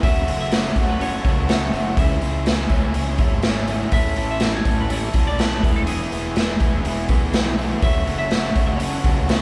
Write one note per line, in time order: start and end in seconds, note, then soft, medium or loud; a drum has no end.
0.00 0.25 F#1 medium
0.00 0.27 F#3 medium
0.00 0.27 A3 medium
0.00 0.28 C#4 medium
0.00 0.27 F#4 loud
0.00 1.96 C#5 medium
0.00 0.38 E5 medium
0.00 1.96 F#5 medium
0.00 1.96 A5 medium
0.00 9.42 E6 medium
0.00 kick loud
0.00 open hi-hat medium
0.27 0.71 F#1 medium
0.27 0.50 F#3 medium
0.27 0.51 A3 medium
0.27 0.52 C#4 medium
0.27 0.51 F#4 medium
0.27 open hi-hat medium
0.41 0.91 E5 medium
0.52 0.75 F#3 loud
0.52 0.75 A3 loud
0.52 0.76 C#4 medium
0.52 0.76 F#4 loud
0.52 snare loud
0.52 open hi-hat medium
0.75 1.19 F#1 medium
0.75 0.98 F#3 medium
0.75 0.99 A3 medium
0.75 1.00 C#4 medium
0.75 0.99 F#4 medium
0.75 kick medium
0.75 open hi-hat soft
0.89 1.02 B4 medium
1.00 1.24 F#3 medium
1.00 1.24 A3 medium
1.00 1.25 C#4 loud
1.00 1.24 F#4 loud
1.00 1.49 C#5 medium
1.00 open hi-hat medium
1.25 1.68 C#2 medium
1.25 1.48 F#3 medium
1.25 1.48 A3 medium
1.25 1.49 C#4 medium
1.25 1.49 F#4 medium
1.25 kick medium
1.25 open hi-hat soft
1.49 1.72 F#3 medium
1.49 1.72 A3 medium
1.49 1.74 C#4 medium
1.49 1.73 F#4 loud
1.49 1.95 C#5 medium
1.49 snare medium
1.49 open hi-hat medium
1.73 1.95 F#1 loud
1.73 1.97 F#3 medium
1.73 1.97 A3 medium
1.73 1.98 C#4 medium
1.73 1.97 F#4 medium
1.73 open hi-hat soft
1.97 2.19 C#2 loud
1.97 2.20 C#3 medium
1.97 2.21 E3 medium
1.97 2.21 G#3 medium
1.97 2.22 C#4 loud
1.97 2.22 E4 medium
1.97 2.21 G#4 medium
1.97 5.60 C#5 medium
1.97 5.60 E5 medium
1.97 3.41 E5 medium
1.97 3.92 G#5 medium
1.97 kick loud
1.97 open hi-hat medium
2.21 2.65 C#2 medium
2.21 2.45 C#3 medium
2.21 2.46 E3 medium
2.21 2.45 G#3 medium
2.21 2.46 C#4 medium
2.21 2.46 E4 medium
2.21 2.46 G#4 medium
2.21 open hi-hat soft
2.46 2.69 C#3 medium
2.46 2.70 E3 medium
2.46 2.70 G#3 medium
2.46 2.70 C#4 medium
2.46 2.71 E4 loud
2.46 2.70 G#4 medium
2.46 snare loud
2.46 open hi-hat medium
2.69 2.92 C#2 medium
2.69 2.94 C#3 medium
2.69 2.95 E3 medium
2.69 2.94 G#3 medium
2.69 2.95 C#4 medium
2.69 2.96 E4 medium
2.69 2.95 G#4 medium
2.69 kick medium
2.69 open hi-hat soft
2.94 3.17 C#2 medium
2.94 3.19 C#3 medium
2.94 3.18 E3 medium
2.94 3.19 G#3 medium
2.94 3.19 C#4 loud
2.94 3.20 E4 loud
2.94 3.19 G#4 loud
2.94 open hi-hat medium
3.18 3.84 G#1 medium
3.18 3.43 C#3 medium
3.18 3.43 E3 medium
3.18 3.44 G#3 medium
3.18 3.44 C#4 medium
3.18 3.45 E4 medium
3.18 3.44 G#4 medium
3.18 kick medium
3.18 open hi-hat soft
3.42 3.68 C#3 medium
3.42 3.68 E3 medium
3.42 3.68 G#3 medium
3.42 3.68 C#4 medium
3.42 3.70 E4 medium
3.42 3.68 G#4 medium
3.42 snare loud
3.42 open hi-hat medium
3.68 3.92 C#3 medium
3.68 3.92 E3 medium
3.68 3.92 G#3 medium
3.68 3.92 C#4 medium
3.68 3.94 E4 medium
3.68 3.92 G#4 medium
3.68 open hi-hat soft
3.92 4.14 A1 medium
3.92 4.16 A2 medium
3.92 4.17 E3 medium
3.92 4.17 A3 medium
3.92 4.17 C#4 medium
3.92 4.18 E4 loud
3.92 4.16 A4 loud
3.92 4.30 E5 medium
3.92 5.63 A5 medium
3.92 kick medium
3.92 open hi-hat medium
4.16 4.60 A1 medium
4.16 4.41 A2 medium
4.16 4.42 E3 medium
4.16 4.42 A3 medium
4.16 4.42 C#4 medium
4.16 4.43 E4 medium
4.16 4.41 A4 medium
4.16 open hi-hat soft
4.31 4.55 E5 medium
4.40 4.65 A2 medium
4.40 4.66 E3 medium
4.40 4.66 A3 loud
4.40 4.66 C#4 medium
4.40 4.67 E4 loud
4.40 4.65 A4 medium
4.40 snare medium
4.40 open hi-hat medium
4.55 4.80 C#5 medium
4.65 5.09 A1 medium
4.65 4.89 A2 medium
4.65 4.90 E3 medium
4.65 4.89 A3 medium
4.65 4.90 C#4 medium
4.65 4.91 E4 medium
4.65 4.90 A4 medium
4.65 kick medium
4.65 open hi-hat medium
4.80 4.92 B4 medium
4.90 5.13 A2 medium
4.90 5.14 E3 medium
4.90 5.14 A3 medium
4.90 5.14 C#4 loud
4.90 5.15 E4 medium
4.90 5.14 A4 medium
4.90 5.27 C#5 medium
4.90 open hi-hat medium
5.13 5.58 B1 medium
5.13 5.37 A2 medium
5.13 5.38 E3 medium
5.13 5.38 A3 medium
5.13 5.38 C#4 medium
5.13 5.39 E4 medium
5.13 5.38 A4 medium
5.13 kick medium
5.13 open hi-hat medium
5.27 5.39 D5 medium
5.38 5.62 A2 medium
5.38 5.63 E3 medium
5.38 5.62 A3 medium
5.38 5.62 C#4 medium
5.38 5.65 E4 medium
5.38 5.63 A4 loud
5.38 5.77 B4 medium
5.38 snare medium
5.38 open hi-hat medium
5.63 6.06 E1 medium
5.63 5.87 E3 loud
5.63 5.87 G#3 medium
5.63 5.87 B3 medium
5.63 5.88 E4 loud
5.63 5.88 G#4 loud
5.63 7.82 B4 medium
5.63 7.81 E5 medium
5.63 7.82 G#5 medium
5.63 kick medium
5.63 open hi-hat soft
5.76 5.81 A4 medium
5.87 6.11 E3 medium
5.87 6.11 G#3 medium
5.87 6.12 B3 medium
5.87 6.13 E4 medium
5.87 7.54 G#4 medium
5.87 6.12 G#4 loud
5.87 open hi-hat medium
6.12 6.56 E1 medium
6.12 6.36 E3 medium
6.12 6.36 G#3 medium
6.12 6.36 B3 medium
6.12 6.37 E4 medium
6.12 6.36 G#4 medium
6.12 open hi-hat soft
6.36 6.61 E3 medium
6.36 6.61 G#3 loud
6.36 6.61 B3 medium
6.36 6.62 E4 loud
6.36 6.61 G#4 loud
6.36 snare medium
6.36 open hi-hat medium
6.60 6.83 E1 medium
6.60 6.85 E3 medium
6.60 6.84 G#3 medium
6.60 6.85 B3 medium
6.60 6.86 E4 medium
6.60 6.85 G#4 medium
6.60 kick medium
6.60 open hi-hat soft
6.85 7.07 E1 loud
6.85 7.09 E3 medium
6.85 7.09 G#3 medium
6.85 7.09 B3 loud
6.85 7.11 E4 loud
6.85 7.10 G#4 medium
6.85 open hi-hat medium
7.08 7.74 B1 medium
7.08 7.34 E3 medium
7.08 7.33 G#3 medium
7.08 7.34 B3 medium
7.08 7.35 E4 medium
7.08 7.34 G#4 medium
7.08 kick medium
7.08 open hi-hat soft
7.33 7.58 E3 medium
7.33 7.58 G#3 medium
7.33 7.58 B3 medium
7.33 7.59 E4 medium
7.33 7.58 G#4 medium
7.33 snare loud
7.33 open hi-hat medium
7.59 7.82 E3 medium
7.59 7.82 G#3 medium
7.59 7.82 B3 medium
7.59 7.83 E4 medium
7.59 7.82 G#4 medium
7.59 open hi-hat soft
7.82 8.04 F#1 medium
7.82 8.06 F#2 medium
7.82 8.07 C#3 medium
7.82 8.07 F#3 loud
7.82 8.07 A3 medium
7.82 8.08 C#4 loud
7.82 8.05 F#4 loud
7.82 9.42 C#5 medium
7.82 8.17 E5 medium
7.82 9.42 F#5 medium
7.82 9.42 A5 medium
7.82 kick loud
7.82 open hi-hat medium
8.07 8.50 F#1 loud
8.07 8.30 F#2 medium
8.07 8.30 C#3 medium
8.07 8.31 F#3 medium
8.07 8.31 A3 medium
8.07 8.32 C#4 medium
8.07 8.30 F#4 medium
8.07 open hi-hat soft
8.18 8.69 E5 loud
8.31 8.54 F#2 loud
8.31 8.55 C#3 medium
8.31 8.55 F#3 medium
8.31 8.55 A3 medium
8.31 8.56 C#4 loud
8.31 8.54 F#4 loud
8.31 snare medium
8.31 open hi-hat medium
8.55 8.99 F#1 medium
8.55 8.78 F#2 medium
8.55 8.78 C#3 medium
8.55 8.79 F#3 medium
8.55 8.79 A3 medium
8.55 8.79 C#4 medium
8.55 8.79 F#4 medium
8.55 kick medium
8.55 open hi-hat medium
8.66 9.42 B4 medium
8.79 9.03 F#2 medium
8.79 9.03 C#3 medium
8.79 9.04 F#3 medium
8.79 9.04 A3 medium
8.79 9.04 C#4 loud
8.79 9.04 F#4 medium
8.79 open hi-hat medium
9.04 9.42 C#2 medium
9.04 9.26 F#2 medium
9.04 9.27 C#3 medium
9.04 9.27 F#3 medium
9.04 9.28 A3 medium
9.04 9.27 C#4 medium
9.04 9.29 F#4 medium
9.04 kick medium
9.04 open hi-hat soft
9.27 9.42 F#2 medium
9.27 9.42 C#3 medium
9.27 9.42 F#3 medium
9.27 9.42 A3 loud
9.27 9.42 C#4 loud
9.27 9.42 F#4 medium
9.27 snare medium
9.27 open hi-hat medium